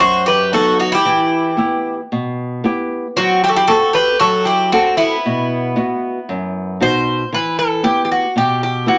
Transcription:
0.00 0.51 F#2 medium
0.00 0.24 F#4 medium
0.00 0.27 C5 loud
0.26 0.51 G4 medium
0.26 0.52 B4 medium
0.52 0.95 F#3 soft
0.52 0.95 B3 soft
0.52 0.95 D#4 medium
0.52 0.77 F#4 medium
0.52 0.78 A4 medium
0.79 0.92 D#4 medium
0.79 0.92 F#4 medium
0.92 1.94 E4 medium
0.92 1.95 G4 medium
1.05 1.57 E3 medium
1.57 2.00 B3 soft
1.57 2.00 E4 soft
1.57 2.00 G4 medium
2.12 2.62 B2 medium
2.64 3.06 B3 medium
2.64 3.06 E4 soft
2.64 3.07 G4 medium
3.16 3.67 F#3 medium
3.16 3.41 C4 medium
3.16 3.43 F#4 medium
3.44 3.48 E4 medium
3.44 3.50 G4 medium
3.48 3.55 F#4 medium
3.48 3.56 A4 medium
3.56 3.67 E4 medium
3.56 3.69 G4 medium
3.67 4.11 C4 soft
3.67 3.92 F#4 medium
3.67 4.11 F#4 soft
3.67 3.92 A4 medium
3.67 4.11 A4 medium
3.93 4.18 G4 medium
3.93 4.19 B4 medium
4.19 4.71 F#3 medium
4.19 4.44 F#4 medium
4.19 4.45 A4 medium
4.45 4.71 E4 medium
4.45 4.72 G4 medium
4.72 4.97 C4 medium
4.72 5.14 C4 soft
4.72 4.97 F#4 medium
4.72 5.14 F#4 soft
4.72 5.15 A4 medium
4.97 6.76 B3 medium
4.97 6.76 E4 medium
5.26 5.76 B2 medium
5.76 6.18 B3 soft
5.76 6.18 F#4 medium
5.76 6.18 D#5 soft
6.29 6.79 F#2 medium
6.80 7.22 B2 soft
6.80 7.22 D#4 soft
6.80 7.22 F#4 soft
6.80 7.30 C5 loud
7.32 7.83 E3 medium
7.32 7.58 B4 medium
7.59 7.83 A4 medium
7.83 8.25 B3 soft
7.83 8.25 E4 soft
7.83 8.02 G4 medium
7.83 8.25 G4 medium
8.05 8.11 G4 medium
8.12 8.35 F#4 medium
8.36 8.86 B2 medium
8.36 8.61 G4 medium
8.63 8.86 G4 medium
8.86 8.98 B3 soft
8.86 8.98 E4 soft
8.86 8.98 F#4 medium
8.86 8.98 G4 medium

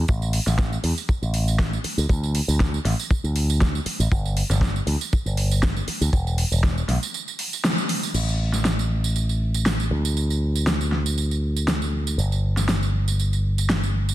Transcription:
0.08 0.38 A1 loud
0.08 kick loud
0.08 tambourine medium
0.22 tambourine soft
0.33 open hi-hat loud
0.47 0.76 A1 loud
0.47 snare soft
0.47 tambourine medium
0.58 kick loud
0.58 snare loud
0.58 tambourine medium
0.73 tambourine soft
0.84 0.92 E2 medium
0.84 open hi-hat medium
0.98 tambourine medium
1.09 muted picked electric bass stroke soft
1.09 kick loud
1.09 tambourine medium
1.22 1.77 A1 medium
1.22 tambourine soft
1.34 open hi-hat loud
1.48 tambourine medium
1.59 kick loud
1.59 snare loud
1.59 tambourine medium
1.73 tambourine soft
1.84 muted picked electric bass stroke soft
1.84 open hi-hat medium
1.98 2.05 D2 medium
1.98 tambourine medium
2.09 2.40 D2 loud
2.09 kick loud
2.09 tambourine medium
2.23 tambourine soft
2.35 open hi-hat loud
2.48 2.78 D2 loud
2.48 tambourine medium
2.60 kick loud
2.60 snare loud
2.60 tambourine medium
2.74 tambourine soft
2.85 2.93 A1 medium
2.85 snare soft
2.85 open hi-hat medium
2.99 tambourine medium
3.11 kick loud
3.11 tambourine medium
3.24 3.79 D2 medium
3.24 tambourine soft
3.36 open hi-hat loud
3.50 tambourine medium
3.61 kick loud
3.61 snare loud
3.61 tambourine medium
3.75 tambourine soft
3.86 muted picked electric bass stroke soft
3.86 open hi-hat medium
4.00 4.07 A1 medium
4.00 tambourine medium
4.12 4.42 G1 loud
4.12 kick loud
4.12 tambourine medium
4.25 tambourine soft
4.37 open hi-hat loud
4.50 4.79 G1 medium
4.50 snare soft
4.50 tambourine medium
4.61 kick loud
4.61 snare loud
4.61 tambourine medium
4.76 tambourine soft
4.87 4.95 D2 medium
4.87 open hi-hat medium
5.01 tambourine medium
5.13 muted picked electric bass stroke soft
5.13 kick loud
5.13 tambourine medium
5.26 5.80 G1 medium
5.26 tambourine soft
5.37 open hi-hat loud
5.51 tambourine medium
5.63 kick loud
5.63 snare loud
5.63 tambourine medium
5.76 tambourine soft
5.88 muted picked electric bass stroke soft
5.88 open hi-hat medium
6.01 6.08 D2 medium
6.01 tambourine medium
6.13 6.43 E1 loud
6.13 kick loud
6.13 tambourine medium
6.27 tambourine soft
6.38 open hi-hat loud
6.52 6.81 E1 loud
6.52 tambourine medium
6.63 kick loud
6.63 snare loud
6.78 tambourine soft
6.88 6.97 B1 medium
6.88 snare soft
6.88 open hi-hat medium
7.03 tambourine medium
7.14 tambourine medium
7.28 tambourine soft
7.39 open hi-hat loud
7.53 tambourine medium
7.64 snare loud
7.64 tambourine medium
7.78 tambourine soft
7.89 open hi-hat medium
8.03 tambourine medium
8.14 9.89 A1 medium
8.14 crash medium
8.14 tambourine medium
8.28 tambourine soft
8.53 snare soft
8.53 tambourine medium
8.65 snare loud
8.65 tambourine soft
8.79 tambourine soft
9.04 tambourine medium
9.16 tambourine soft
9.29 tambourine soft
9.54 tambourine medium
9.66 snare loud
9.66 tambourine medium
9.80 tambourine soft
9.91 12.16 D2 medium
10.05 tambourine medium
10.17 tambourine soft
10.30 tambourine soft
10.56 tambourine medium
10.67 snare loud
10.67 tambourine soft
10.81 tambourine soft
10.92 snare soft
11.06 tambourine medium
11.18 tambourine soft
11.31 tambourine soft
11.57 tambourine medium
11.68 snare loud
11.68 tambourine medium
11.82 tambourine soft
12.07 tambourine medium
12.18 14.15 G1 medium
12.18 tambourine soft
12.32 tambourine soft
12.57 snare soft
12.57 tambourine medium
12.69 snare loud
12.69 tambourine soft
12.83 tambourine soft
13.08 tambourine medium
13.20 tambourine soft
13.33 tambourine soft
13.58 tambourine medium
13.70 snare loud
13.70 tambourine soft
13.83 tambourine soft
14.09 tambourine medium

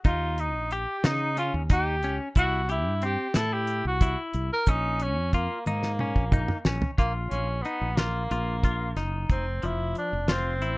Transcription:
0.05 0.56 D#2 loud
0.05 0.53 D#4 medium
0.05 0.42 F4 medium
0.05 kick loud
0.05 closed hi-hat medium
0.38 0.74 D#4 medium
0.38 closed hi-hat medium
0.56 0.85 A#1 medium
0.71 1.07 G4 medium
0.71 0.96 G4 medium
0.71 closed hi-hat soft
1.04 1.50 C#3 medium
1.04 1.29 D#4 medium
1.04 1.38 D#4 medium
1.04 snare loud
1.04 closed hi-hat medium
1.37 1.62 C#4 medium
1.37 1.53 F4 medium
1.37 closed hi-hat medium
1.54 2.03 D#2 medium
1.70 1.95 D#4 medium
1.70 2.17 G4 medium
1.70 kick loud
1.70 closed hi-hat medium
2.03 2.18 C#2 loud
2.03 2.28 C#4 medium
2.03 closed hi-hat medium
2.35 2.86 C2 loud
2.35 2.61 E4 medium
2.35 2.68 F#4 medium
2.35 kick medium
2.35 closed hi-hat medium
2.35 shaker medium
2.69 3.01 E4 medium
2.69 2.94 G4 medium
2.69 closed hi-hat medium
2.86 3.16 G2 medium
3.02 3.27 C4 medium
3.02 3.38 G4 medium
3.02 closed hi-hat medium
3.34 3.81 A2 medium
3.34 3.84 E4 medium
3.34 3.55 A4 medium
3.34 snare medium
3.34 closed hi-hat medium
3.34 shaker soft
3.53 3.86 G4 medium
3.67 closed hi-hat medium
3.85 4.15 C2 medium
3.85 4.17 F#4 medium
4.01 4.50 E4 medium
4.01 kick loud
4.01 closed hi-hat medium
4.01 shaker soft
4.33 4.49 C2 loud
4.33 closed hi-hat medium
4.53 4.71 A#4 medium
4.67 5.17 A#1 medium
4.67 5.16 C#4 medium
4.67 5.04 D#4 medium
4.67 kick medium
4.67 closed hi-hat medium
4.67 shaker medium
5.00 5.33 C#4 medium
5.00 closed hi-hat soft
5.00 shaker soft
5.17 5.47 F2 medium
5.33 5.64 A#3 medium
5.33 5.58 F4 medium
5.33 kick medium
5.33 closed hi-hat medium
5.66 6.12 G#2 medium
5.66 6.62 A#3 medium
5.66 5.91 D#4 medium
5.66 high tom soft
5.66 shaker soft
5.83 snare soft
5.99 6.24 C#4 medium
5.99 mid tom medium
6.16 6.46 A#1 medium
6.16 kick medium
6.32 6.57 D#4 medium
6.32 kick loud
6.32 mid tom medium
6.32 shaker soft
6.48 mid tom medium
6.65 6.80 A#1 medium
6.65 6.90 C#4 medium
6.65 snare medium
6.82 floor tom medium
6.98 7.28 A#1 medium
6.98 7.13 A#3 medium
6.98 7.47 F4 medium
6.98 kick medium
6.98 closed hi-hat medium
7.30 7.61 A#1 medium
7.30 7.64 C#4 medium
7.30 closed hi-hat medium
7.62 7.97 B3 medium
7.62 7.89 D#4 medium
7.62 closed hi-hat soft
7.81 8.27 A#1 medium
7.96 8.96 A#3 medium
7.96 8.23 F4 medium
7.96 snare medium
7.96 closed hi-hat medium
8.31 8.93 A#1 medium
8.31 8.55 F4 medium
8.31 closed hi-hat medium
8.63 8.88 F4 medium
8.63 kick medium
8.63 closed hi-hat medium
8.96 9.26 F#1 medium
8.96 9.45 D#4 medium
8.96 snare soft
8.96 closed hi-hat medium
9.29 9.60 F1 medium
9.29 9.67 C4 medium
9.29 kick medium
9.29 closed hi-hat medium
9.62 9.93 F1 medium
9.62 10.11 F3 medium
9.62 9.97 E4 medium
9.62 closed hi-hat medium
9.95 10.34 D4 medium
9.95 closed hi-hat soft
10.13 10.63 F1 medium
10.28 10.53 F4 medium
10.28 snare loud
10.28 closed hi-hat medium
10.32 10.78 C4 medium
10.62 10.78 A1 medium
10.62 10.78 E4 medium
10.62 closed hi-hat soft

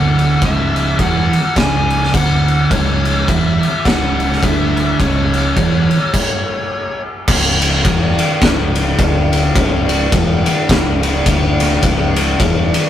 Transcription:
0.00 0.38 D1 loud
0.00 0.41 D2 medium
0.00 0.41 D3 medium
0.00 0.45 F#5 loud
0.19 crash medium
0.42 0.95 C#1 loud
0.42 0.99 C#2 loud
0.42 0.99 C#3 loud
0.42 1.02 E5 loud
0.42 kick loud
0.42 crash medium
0.76 crash medium
0.99 1.31 E1 medium
0.99 1.32 E2 medium
0.99 1.32 E3 loud
0.99 1.58 F#5 loud
0.99 kick loud
0.99 crash medium
1.33 crash medium
1.56 2.10 C#1 medium
1.56 2.13 C#2 medium
1.56 2.13 C#3 loud
1.56 2.15 G#5 loud
1.56 kick loud
1.56 snare loud
1.56 crash medium
1.90 crash medium
2.04 snare soft
2.14 2.67 D1 loud
2.14 2.70 D2 loud
2.14 2.71 D3 loud
2.14 2.68 F#5 medium
2.14 kick loud
2.14 crash medium
2.48 crash medium
2.71 3.24 C#1 loud
2.71 3.27 C#2 loud
2.71 3.27 C#3 loud
2.71 3.29 C#5 medium
2.71 kick loud
2.71 crash medium
3.05 crash medium
3.28 3.60 E1 medium
3.28 3.61 E2 medium
3.28 3.61 E3 loud
3.28 3.87 E5 medium
3.28 kick loud
3.28 crash medium
3.63 crash medium
3.85 4.38 C#1 medium
3.85 4.42 C#2 medium
3.85 4.42 C#3 loud
3.85 4.44 F#5 loud
3.85 kick loud
3.85 snare loud
3.85 crash medium
4.20 crash medium
4.33 snare soft
4.43 4.96 D1 medium
4.43 4.99 D2 medium
4.43 5.00 D3 loud
4.43 4.96 E5 medium
4.43 kick loud
4.43 crash medium
4.77 crash medium
4.99 5.53 C#1 medium
4.99 5.56 C#2 loud
4.99 5.56 C#3 loud
4.99 7.01 C#5 medium
4.99 kick loud
4.99 crash medium
5.34 crash medium
5.56 5.88 E1 medium
5.56 5.89 E2 medium
5.56 5.90 E3 loud
5.56 kick loud
5.56 crash medium
5.91 crash medium
6.14 kick loud
6.14 crash loud
7.27 7.81 C#1 loud
7.27 7.84 C#2 loud
7.27 7.85 C#3 loud
7.27 kick loud
7.27 crash loud
7.62 ride medium
7.85 8.16 E1 loud
7.85 8.18 E2 medium
7.85 8.18 E3 loud
7.85 kick loud
7.85 ride loud
8.19 ride medium
8.41 8.95 C#1 medium
8.41 8.98 C#2 loud
8.41 8.98 C#3 loud
8.41 kick loud
8.41 snare loud
8.41 ride loud
8.76 ride medium
8.98 9.52 D1 loud
8.98 9.55 D2 loud
8.98 9.55 D3 loud
8.98 kick loud
8.98 ride loud
9.33 ride medium
9.55 10.09 C#1 loud
9.55 10.12 C#2 loud
9.55 10.12 C#3 loud
9.55 kick loud
9.55 ride loud
9.89 ride medium
10.12 10.44 E1 loud
10.12 10.45 E2 loud
10.12 10.46 E3 loud
10.12 kick loud
10.12 ride loud
10.46 ride medium
10.69 11.22 C#1 loud
10.69 11.26 C#2 loud
10.69 11.26 C#3 loud
10.69 kick loud
10.69 snare loud
10.69 ride loud
11.03 ride medium
11.26 11.79 D1 loud
11.26 11.82 D2 loud
11.26 11.83 D3 loud
11.26 kick loud
11.26 ride loud
11.60 snare soft
11.60 ride medium
11.82 12.36 C#1 loud
11.82 12.39 C#2 loud
11.82 12.40 C#3 loud
11.82 kick loud
11.82 ride loud
12.16 ride medium
12.40 12.71 E1 loud
12.40 12.73 E2 loud
12.40 12.73 E3 loud
12.40 kick loud
12.40 ride loud
12.74 ride medium

